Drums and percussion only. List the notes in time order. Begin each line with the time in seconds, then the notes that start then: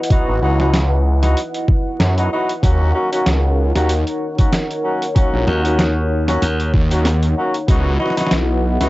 0.03 closed hi-hat
0.10 kick, closed hi-hat
0.60 snare
0.74 snare, closed hi-hat
1.23 snare, closed hi-hat
1.37 closed hi-hat
1.54 closed hi-hat
1.68 kick
2.00 snare, closed hi-hat
2.18 closed hi-hat
2.49 closed hi-hat
2.63 kick, closed hi-hat
3.13 closed hi-hat
3.26 snare, closed hi-hat
3.76 snare, closed hi-hat
3.89 closed hi-hat
4.07 closed hi-hat
4.38 kick, closed hi-hat
4.53 snare, closed hi-hat
4.71 closed hi-hat
5.02 closed hi-hat
5.16 kick, closed hi-hat
5.48 snare
5.65 closed hi-hat
5.79 snare, closed hi-hat
6.28 snare, closed hi-hat
6.42 closed hi-hat
6.60 closed hi-hat
6.74 kick
6.91 closed hi-hat
7.05 snare, closed hi-hat
7.23 closed hi-hat
7.54 closed hi-hat
7.68 kick, closed hi-hat
8.00 snare
8.06 snare
8.10 snare
8.17 snare, closed hi-hat
8.21 snare
8.27 snare
8.31 snare, closed hi-hat
8.81 snare, closed hi-hat